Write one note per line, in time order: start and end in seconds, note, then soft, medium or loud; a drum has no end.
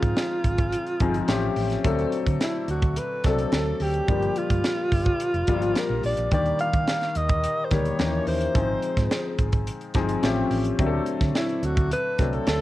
0.00 0.12 G#2 medium
0.00 0.38 F3 medium
0.00 0.38 G#3 medium
0.00 0.38 C4 medium
0.00 0.38 D#4 medium
0.00 1.57 F4 medium
0.00 0.38 G#4 medium
0.00 kick medium
0.00 closed hi-hat medium
0.17 snare loud
0.17 closed hi-hat medium
0.44 0.73 G#1 medium
0.44 kick medium
0.44 closed hi-hat medium
0.58 kick medium
0.58 closed hi-hat soft
0.72 closed hi-hat medium
0.86 closed hi-hat soft
1.00 1.19 G1 medium
1.00 1.27 F3 medium
1.00 1.28 G#3 medium
1.00 1.27 C4 medium
1.00 1.29 D#4 medium
1.00 1.29 G#4 medium
1.00 kick medium
1.00 closed hi-hat medium
1.14 closed hi-hat medium
1.28 1.47 A1 medium
1.28 1.73 F3 medium
1.28 1.73 A3 medium
1.28 1.73 C4 medium
1.28 1.73 C#4 medium
1.28 1.74 G4 medium
1.28 snare loud
1.28 closed hi-hat medium
1.56 1.75 A1 medium
1.56 open hi-hat medium
1.70 snare soft
1.70 closed hi-hat soft
1.84 2.04 D2 medium
1.84 2.61 F#3 medium
1.84 2.62 A3 medium
1.84 2.62 C4 medium
1.84 2.62 D4 medium
1.84 2.62 A4 medium
1.84 kick loud
1.84 closed hi-hat medium
1.99 closed hi-hat soft
2.12 closed hi-hat medium
2.26 2.36 D3 medium
2.26 kick medium
2.26 closed hi-hat medium
2.41 2.67 E4 medium
2.41 snare loud
2.41 closed hi-hat medium
2.68 2.97 D2 medium
2.68 3.00 F#4 medium
2.68 closed hi-hat medium
2.82 kick medium
2.82 closed hi-hat soft
2.96 3.28 B4 medium
2.96 closed hi-hat loud
3.24 3.43 C2 medium
3.24 3.82 F#3 medium
3.24 3.82 A3 medium
3.24 3.82 C4 medium
3.24 3.83 D4 medium
3.24 3.83 A4 medium
3.24 3.53 A4 medium
3.24 kick medium
3.24 snare soft
3.24 closed hi-hat medium
3.38 closed hi-hat medium
3.52 3.71 D2 medium
3.52 3.84 A4 medium
3.52 snare loud
3.52 closed hi-hat medium
3.80 3.99 D2 medium
3.80 4.39 G4 medium
3.80 open hi-hat medium
3.94 closed hi-hat soft
4.08 4.27 G1 medium
4.08 4.85 F3 medium
4.08 4.85 G3 medium
4.08 4.85 A#3 medium
4.08 4.86 D4 medium
4.08 4.86 G4 medium
4.08 kick loud
4.08 closed hi-hat medium
4.22 closed hi-hat soft
4.36 5.79 F4 medium
4.36 closed hi-hat medium
4.50 4.60 G2 medium
4.50 kick medium
4.50 closed hi-hat medium
4.64 snare loud
4.64 closed hi-hat medium
4.92 5.11 G1 medium
4.92 kick medium
4.92 open hi-hat medium
5.05 kick medium
5.05 closed hi-hat soft
5.20 closed hi-hat loud
5.34 5.43 F1 medium
5.34 closed hi-hat soft
5.47 5.62 G1 medium
5.47 6.06 F3 medium
5.47 6.06 G3 medium
5.47 6.06 A#3 medium
5.47 6.06 D4 medium
5.47 6.06 F4 medium
5.47 kick medium
5.47 closed hi-hat medium
5.62 5.72 G#1 medium
5.62 closed hi-hat soft
5.76 6.05 A#4 medium
5.76 snare loud
5.76 closed hi-hat medium
5.90 5.99 A#1 medium
6.03 6.13 A#1 medium
6.03 6.31 D5 medium
6.03 open hi-hat medium
6.17 6.27 A#1 medium
6.17 closed hi-hat soft
6.31 6.51 D#2 medium
6.31 7.09 D#3 medium
6.31 7.09 G3 medium
6.31 7.09 A#3 medium
6.31 7.09 D4 medium
6.31 7.09 G4 medium
6.31 6.59 D5 medium
6.31 kick loud
6.31 closed hi-hat medium
6.46 closed hi-hat soft
6.59 7.18 F5 loud
6.59 closed hi-hat medium
6.73 6.83 D#3 medium
6.73 kick medium
6.73 closed hi-hat soft
6.87 snare loud
6.87 closed hi-hat medium
7.01 snare soft
7.01 closed hi-hat soft
7.15 7.44 D#2 medium
7.15 7.66 D#5 loud
7.15 closed hi-hat medium
7.29 kick medium
7.29 closed hi-hat soft
7.44 closed hi-hat loud
7.65 7.74 C5 medium
7.71 7.90 D2 medium
7.71 7.99 D#3 medium
7.71 7.99 G3 medium
7.71 7.97 A#3 medium
7.71 8.00 D4 medium
7.71 7.98 G4 medium
7.71 8.28 C#5 medium
7.71 kick medium
7.71 snare soft
7.71 closed hi-hat medium
7.85 closed hi-hat medium
7.98 8.19 D#2 medium
7.98 8.44 E3 medium
7.98 8.44 A#3 medium
7.98 8.44 C#4 medium
7.98 8.44 D#4 medium
7.98 8.44 G4 medium
7.98 snare loud
7.98 closed hi-hat medium
8.27 8.46 D#2 medium
8.27 9.36 C5 medium
8.27 open hi-hat medium
8.41 closed hi-hat soft
8.54 8.74 G#1 medium
8.54 9.32 F3 medium
8.54 9.32 G#3 medium
8.54 9.32 C4 medium
8.54 9.33 D#4 medium
8.54 9.33 G#4 medium
8.54 kick loud
8.54 closed hi-hat medium
8.83 closed hi-hat medium
8.97 9.07 G#2 medium
8.97 kick medium
8.97 snare soft
8.97 closed hi-hat medium
9.11 snare loud
9.11 closed hi-hat medium
9.39 9.68 G#1 medium
9.39 kick medium
9.39 closed hi-hat medium
9.52 kick medium
9.52 closed hi-hat soft
9.67 closed hi-hat loud
9.81 closed hi-hat soft
9.94 10.14 G1 medium
9.94 10.21 F3 medium
9.94 10.23 G#3 medium
9.94 10.22 C4 medium
9.94 10.23 D#4 medium
9.94 10.23 G#4 medium
9.94 kick medium
9.94 snare soft
9.94 closed hi-hat medium
10.09 closed hi-hat medium
10.22 10.42 A1 medium
10.22 10.68 F3 medium
10.22 10.68 A3 medium
10.22 10.68 C4 medium
10.22 10.68 C#4 medium
10.22 10.68 G4 medium
10.22 snare loud
10.22 closed hi-hat medium
10.51 10.70 A1 medium
10.51 open hi-hat medium
10.64 closed hi-hat soft
10.79 10.98 D2 loud
10.79 11.56 F#3 medium
10.79 11.56 A3 medium
10.79 11.56 C4 medium
10.79 11.57 D4 medium
10.79 10.86 G4 medium
10.79 kick loud
10.79 closed hi-hat medium
10.86 11.60 A4 medium
11.06 closed hi-hat medium
11.21 11.31 D3 medium
11.21 kick medium
11.21 snare soft
11.21 closed hi-hat medium
11.35 11.66 E4 medium
11.35 snare loud
11.35 closed hi-hat medium
11.49 closed hi-hat soft
11.63 11.92 D2 medium
11.63 11.92 F#4 medium
11.63 closed hi-hat medium
11.77 kick medium
11.77 closed hi-hat soft
11.91 12.36 B4 medium
11.91 closed hi-hat medium
12.18 12.38 C2 medium
12.18 12.61 F#3 medium
12.18 12.61 A3 medium
12.18 12.61 C4 medium
12.18 12.61 D4 medium
12.18 12.61 A4 medium
12.18 kick medium
12.18 snare soft
12.18 closed hi-hat medium
12.33 12.48 A4 medium
12.33 closed hi-hat medium
12.47 12.61 D2 medium
12.47 12.61 A4 loud
12.47 snare loud
12.47 closed hi-hat medium